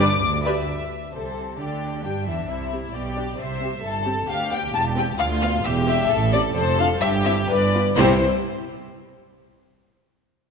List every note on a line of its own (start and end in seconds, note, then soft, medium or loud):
0.00 0.15 G1 medium
0.00 0.15 G2 medium
0.00 0.11 B4 medium
0.00 0.11 D5 medium
0.00 0.47 D6 loud
0.22 0.62 D2 medium
0.45 0.57 D4 medium
0.45 0.57 G4 medium
0.45 0.57 B4 medium
0.45 0.57 D5 medium
0.45 1.11 E5 medium
1.14 1.57 C2 soft
1.14 1.57 C3 soft
1.14 1.57 C4 soft
1.14 1.57 A4 soft
1.14 1.61 C5 soft
1.59 2.05 D2 medium
1.59 2.06 D3 soft
1.59 2.05 D4 soft
1.59 2.05 G4 soft
1.59 2.05 D5 medium
2.04 2.28 G2 medium
2.04 2.28 G3 soft
2.04 2.51 D4 soft
2.04 2.28 G4 medium
2.04 2.28 G5 medium
2.27 2.50 E2 medium
2.27 2.51 E3 medium
2.27 2.36 E4 medium
2.27 2.94 E5 medium
2.49 2.87 C2 soft
2.49 2.88 C3 soft
2.49 2.96 E4 soft
2.72 2.79 C4 soft
2.72 2.80 G4 soft
2.94 3.32 B1 medium
2.94 3.33 B2 soft
2.94 3.40 G4 medium
2.94 3.39 D5 medium
3.16 3.24 D4 soft
3.16 3.24 G4 soft
3.39 3.77 C2 medium
3.39 3.77 C3 soft
3.39 3.83 C5 medium
3.39 3.85 E5 medium
3.61 3.68 C4 soft
3.61 3.69 G4 soft
3.84 4.21 G1 medium
3.84 4.22 G2 soft
3.84 4.28 A4 medium
3.84 4.08 A5 medium
4.05 4.13 C4 medium
4.05 4.13 G4 medium
4.28 4.66 D2 medium
4.28 5.19 G4 medium
4.28 4.50 F5 loud
4.51 4.58 B3 soft
4.51 4.58 G4 medium
4.51 4.75 G5 medium
4.73 5.11 E1 medium
4.73 5.12 E2 medium
4.73 4.83 A5 medium
4.96 5.03 C4 medium
4.96 5.03 G4 medium
4.96 5.06 G5 medium
5.18 5.57 D2 medium
5.18 5.64 F4 medium
5.18 5.27 F5 loud
5.41 5.49 B3 medium
5.41 5.49 B4 medium
5.41 5.50 F5 loud
5.64 6.03 E1 loud
5.64 6.03 E2 medium
5.64 6.11 G4 medium
5.64 5.72 E5 medium
5.87 5.95 C4 medium
5.87 5.95 G4 medium
5.87 6.32 E5 loud
6.10 6.49 A1 loud
6.10 6.48 A2 medium
6.10 6.54 A4 medium
6.32 6.40 C4 medium
6.32 6.40 G4 medium
6.32 6.41 D5 loud
6.55 6.95 F1 medium
6.55 6.95 F2 medium
6.55 7.01 A4 loud
6.55 6.78 C5 loud
6.79 6.87 D4 medium
6.79 6.87 F4 medium
6.79 6.87 F5 loud
7.00 7.42 G1 medium
7.00 7.42 G2 medium
7.00 7.49 G4 loud
7.00 7.08 E5 loud
7.25 7.33 C4 medium
7.25 7.33 E4 medium
7.25 7.33 E5 loud
7.49 7.90 G1 medium
7.49 7.90 G2 medium
7.49 7.73 B4 medium
7.49 7.97 D5 medium
7.74 7.82 B3 medium
7.74 7.81 F4 medium
7.97 8.24 C2 loud
7.97 8.24 C3 loud
7.97 8.24 C4 medium
7.97 8.24 E4 medium
7.97 8.24 G4 medium
7.97 8.23 C5 loud
7.97 8.23 C5 medium